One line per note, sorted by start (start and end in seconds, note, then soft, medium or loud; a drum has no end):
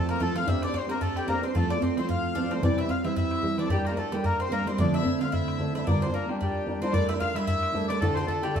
0.00 0.18 F3 medium
0.00 0.20 A3 medium
0.00 0.20 C4 medium
0.00 0.21 F4 medium
0.00 bodhran soft
0.08 0.20 A#3 medium
0.08 0.23 A#4 medium
0.08 0.22 A#4 medium
0.08 bodhran medium
0.20 0.33 F3 medium
0.20 0.36 A3 medium
0.20 0.35 A3 medium
0.20 0.34 C4 medium
0.20 0.36 F4 medium
0.20 0.38 A4 medium
0.20 0.37 A4 loud
0.20 bodhran medium
0.34 0.46 F3 medium
0.34 0.48 A3 medium
0.34 0.45 C4 medium
0.34 0.47 F4 medium
0.34 0.48 F4 medium
0.34 0.49 F5 medium
0.34 0.48 F5 loud
0.34 bodhran medium
0.46 0.68 C4 medium
0.46 0.68 D4 medium
0.46 0.62 E4 medium
0.46 0.67 G4 medium
0.46 0.65 C5 medium
0.46 0.62 E5 medium
0.46 0.64 E5 loud
0.46 bodhran loud
0.62 0.74 D4 medium
0.62 0.76 D5 loud
0.62 0.75 D5 medium
0.62 bodhran medium
0.66 0.87 D4 soft
0.66 0.88 G4 medium
0.66 0.88 C5 soft
0.66 bodhran soft
0.74 0.88 C4 medium
0.74 0.90 C5 medium
0.74 0.91 C5 medium
0.74 bodhran medium
0.87 1.01 A#3 medium
0.87 1.27 C4 medium
0.87 1.27 D4 medium
0.87 1.28 G4 medium
0.87 1.04 A#4 medium
0.87 1.02 A#4 medium
0.87 1.30 C5 medium
0.87 bodhran medium
1.01 1.17 A3 medium
1.01 1.17 A4 medium
1.01 1.18 A4 medium
1.01 bodhran medium
1.09 bodhran soft
1.16 1.28 G3 medium
1.16 1.29 G4 medium
1.16 1.31 G4 medium
1.16 bodhran medium
1.27 1.42 A#3 medium
1.27 1.41 C4 medium
1.27 1.42 D4 medium
1.27 1.43 G4 medium
1.27 1.44 A#4 loud
1.27 1.45 A#4 medium
1.27 1.43 C5 medium
1.27 bodhran medium
1.36 bodhran soft
1.42 1.54 C4 medium
1.42 1.55 D4 medium
1.42 1.56 G4 medium
1.42 1.55 C5 medium
1.42 1.56 C5 medium
1.42 bodhran medium
1.55 1.76 F3 medium
1.55 1.71 A3 medium
1.55 1.76 A3 medium
1.55 1.76 C4 medium
1.55 1.74 F4 loud
1.55 1.71 A4 loud
1.55 1.72 A4 medium
1.55 bodhran loud
1.70 1.81 D4 medium
1.70 1.82 D5 loud
1.70 1.84 D5 medium
1.70 bodhran medium
1.75 1.98 A3 soft
1.75 1.96 C4 soft
1.75 1.97 F4 soft
1.82 1.96 C4 medium
1.82 1.97 C5 medium
1.82 bodhran medium
1.97 2.35 F3 medium
1.97 2.37 A3 medium
1.97 2.10 C4 medium
1.97 2.36 C4 medium
1.97 2.37 F4 medium
1.97 2.08 C5 medium
1.97 2.10 C5 medium
1.97 bodhran medium
2.08 2.34 F4 medium
2.08 2.54 F5 medium
2.08 2.53 F5 medium
2.08 bodhran medium
2.35 2.49 F3 medium
2.35 2.52 A3 medium
2.35 2.50 C4 medium
2.35 2.50 D4 medium
2.35 2.53 F4 medium
2.35 bodhran medium
2.44 bodhran soft
2.51 2.62 F3 medium
2.51 2.63 A3 medium
2.51 2.62 C4 medium
2.51 2.64 F4 medium
2.51 2.64 C5 medium
2.51 2.65 C5 medium
2.51 bodhran medium
2.62 2.83 C3 medium
2.62 2.84 E3 medium
2.62 2.84 G3 medium
2.62 2.84 C4 medium
2.62 2.77 D4 medium
2.62 2.83 G4 medium
2.62 2.80 D5 medium
2.62 2.79 D5 medium
2.62 bodhran loud
2.78 2.89 E4 medium
2.78 2.92 E5 medium
2.78 2.91 E5 medium
2.78 bodhran medium
2.84 3.04 G3 soft
2.84 3.05 C4 soft
2.84 3.05 G4 soft
2.84 bodhran soft
2.89 3.03 F4 medium
2.89 3.06 F5 medium
2.89 3.06 F5 loud
2.89 bodhran medium
3.04 3.41 E3 medium
3.04 3.42 G3 medium
3.04 3.43 C4 medium
3.04 3.15 E4 medium
3.04 3.44 G4 medium
3.04 3.16 E5 medium
3.04 bodhran medium
3.16 3.59 E4 medium
3.16 3.61 E5 medium
3.16 3.56 E5 loud
3.16 bodhran medium
3.24 bodhran soft
3.31 bodhran medium
3.42 3.57 E3 medium
3.42 3.58 G3 medium
3.42 3.59 C4 medium
3.42 3.60 G4 medium
3.42 bodhran medium
3.51 bodhran soft
3.58 3.69 E3 medium
3.58 3.69 G3 medium
3.58 3.71 C4 medium
3.58 3.70 D4 medium
3.58 3.71 G4 medium
3.58 3.71 D5 medium
3.58 3.69 D5 medium
3.58 bodhran medium
3.66 3.91 G3 medium
3.66 3.70 A4 medium
3.66 bodhran medium
3.70 3.85 G3 medium
3.70 3.92 A#3 medium
3.70 3.92 D4 medium
3.70 3.87 G4 loud
3.70 3.85 G4 medium
3.70 3.90 G4 loud
3.85 3.97 A#3 medium
3.85 3.98 A#4 medium
3.85 3.97 A#4 medium
3.85 bodhran medium
3.91 4.12 A#3 soft
3.91 4.13 D4 soft
3.91 4.13 G4 soft
3.91 bodhran soft
3.97 4.13 A3 medium
3.97 4.12 A4 medium
3.97 4.15 A4 medium
3.97 bodhran medium
4.12 4.49 G3 medium
4.12 4.25 G3 medium
4.12 4.50 A#3 medium
4.12 4.52 D4 medium
4.12 4.25 G4 medium
4.12 4.52 G4 medium
4.12 bodhran medium
4.24 4.38 A#3 medium
4.24 4.41 A#4 loud
4.24 4.40 A#4 medium
4.24 bodhran medium
4.32 bodhran soft
4.40 4.51 C4 medium
4.40 4.52 C5 loud
4.40 4.54 C5 medium
4.40 bodhran medium
4.50 4.65 G3 medium
4.50 4.66 A#3 medium
4.50 4.67 D4 medium
4.50 4.67 G4 medium
4.50 4.67 A#4 loud
4.50 4.69 A#4 medium
4.50 bodhran medium
4.60 bodhran soft
4.66 4.78 G3 medium
4.66 4.79 A#3 medium
4.66 4.79 C4 medium
4.66 4.79 D4 medium
4.66 4.80 G4 medium
4.66 4.81 C5 medium
4.66 4.80 C5 medium
4.66 bodhran medium
4.78 5.00 D3 medium
4.78 5.00 F3 medium
4.78 5.00 A3 medium
4.78 5.01 C4 medium
4.78 4.92 D4 medium
4.78 4.98 D4 medium
4.78 4.93 D5 medium
4.78 4.95 D5 loud
4.78 bodhran medium
4.94 5.19 E4 medium
4.94 5.19 E5 loud
4.94 5.22 E5 medium
4.94 bodhran medium
4.99 5.21 A3 soft
4.99 5.20 C4 soft
4.99 5.21 D4 medium
4.99 bodhran soft
5.06 bodhran medium
5.20 5.58 D3 medium
5.20 5.59 A3 medium
5.20 5.58 C4 medium
5.20 5.61 D4 medium
5.20 5.32 F4 medium
5.20 5.31 F5 medium
5.20 5.33 F5 medium
5.20 bodhran medium
5.32 5.74 E4 medium
5.32 5.72 E5 medium
5.32 5.74 E5 medium
5.32 bodhran medium
5.41 bodhran soft
5.48 bodhran medium
5.58 5.73 D3 medium
5.58 5.74 A3 medium
5.58 5.74 C4 medium
5.58 5.75 D4 medium
5.58 bodhran medium
5.67 bodhran soft
5.74 5.85 D3 medium
5.74 5.87 A3 medium
5.74 5.86 C4 medium
5.74 5.87 D4 medium
5.74 5.86 E4 medium
5.74 5.87 E5 medium
5.74 5.86 E5 medium
5.74 bodhran medium
5.86 6.07 G2 medium
5.86 6.07 D3 medium
5.86 6.07 G3 medium
5.86 6.08 A#3 medium
5.86 6.01 D4 medium
5.86 6.05 D4 medium
5.86 6.06 F4 medium
5.86 6.00 D5 medium
5.86 6.02 D5 medium
5.86 bodhran loud
6.02 6.13 C4 medium
6.02 6.16 C5 medium
6.02 6.14 C5 medium
6.02 bodhran medium
6.06 6.27 G3 soft
6.06 6.26 A#3 soft
6.06 6.28 D4 soft
6.06 6.28 F4 soft
6.06 bodhran soft
6.14 6.38 A#3 medium
6.14 6.31 A#4 medium
6.14 6.29 A#4 medium
6.14 bodhran medium
6.27 6.66 G3 medium
6.27 6.65 A#3 medium
6.27 6.69 D4 medium
6.27 6.67 F4 medium
6.27 6.41 G4 medium
6.27 6.40 G4 medium
6.27 bodhran medium
6.41 6.79 G3 medium
6.41 6.80 G4 medium
6.41 bodhran medium
6.66 6.81 G3 medium
6.66 6.80 A#3 medium
6.66 6.83 D4 medium
6.66 6.82 F4 medium
6.66 bodhran medium
6.75 bodhran soft
6.81 6.91 G3 medium
6.81 6.92 A#3 medium
6.81 6.93 C4 medium
6.81 6.92 D4 medium
6.81 6.94 F4 medium
6.81 6.94 C5 medium
6.81 6.95 C5 medium
6.92 7.14 G3 medium
6.92 7.13 A3 medium
6.92 7.14 D4 medium
6.92 7.08 D4 medium
6.92 7.12 A#4 medium
6.92 7.07 D5 loud
6.92 7.20 D5 loud
6.92 bodhran loud
7.09 7.20 E4 loud
7.09 7.14 E5 medium
7.09 bodhran medium
7.13 7.36 A3 soft
7.13 7.34 D4 soft
7.13 7.35 A#4 medium
7.13 bodhran soft
7.20 7.35 F4 medium
7.20 7.36 F5 loud
7.20 7.37 F5 medium
7.20 bodhran medium
7.34 7.72 G3 medium
7.34 7.73 D4 medium
7.34 7.46 E4 medium
7.34 7.74 A#4 medium
7.34 7.45 E5 medium
7.34 7.45 E5 loud
7.34 bodhran medium
7.46 7.87 E4 loud
7.46 7.90 E5 medium
7.46 7.86 E5 loud
7.46 bodhran medium
7.56 bodhran soft
7.63 bodhran medium
7.73 7.87 G3 medium
7.73 7.89 A3 medium
7.73 7.89 D4 medium
7.73 7.90 A#4 medium
7.73 bodhran medium
7.83 bodhran soft
7.88 8.01 G3 medium
7.88 8.02 A3 medium
7.88 8.02 D4 medium
7.88 8.01 D4 medium
7.88 8.02 A#4 medium
7.88 8.00 D5 loud
7.88 8.03 D5 medium
7.88 bodhran medium
8.00 8.23 D2 medium
8.00 8.23 A2 medium
8.00 8.23 D3 loud
8.00 8.16 A3 medium
8.00 8.22 D4 medium
8.00 8.21 F4 medium
8.00 8.16 A4 loud
8.00 8.17 A4 medium
8.00 8.20 A4 medium
8.00 bodhran medium
8.14 8.28 C4 medium
8.14 8.28 C5 loud
8.14 8.29 C5 loud
8.14 bodhran medium
8.21 8.42 D3 soft
8.21 8.43 D4 soft
8.21 8.44 F4 medium
8.21 8.43 A4 soft
8.21 bodhran soft
8.27 8.44 A3 medium
8.27 8.43 A4 loud
8.27 8.39 A4 medium
8.27 bodhran medium
8.40 8.60 D3 medium
8.40 8.55 G3 medium
8.40 8.55 G4 medium
8.40 8.56 G4 medium
8.40 8.45 A4 medium
8.40 bodhran medium
8.44 8.60 D4 medium
8.44 8.60 F4 medium
8.44 8.60 A4 medium
8.55 8.60 A3 medium
8.55 8.60 A4 loud
8.55 8.60 A4 medium
8.55 bodhran medium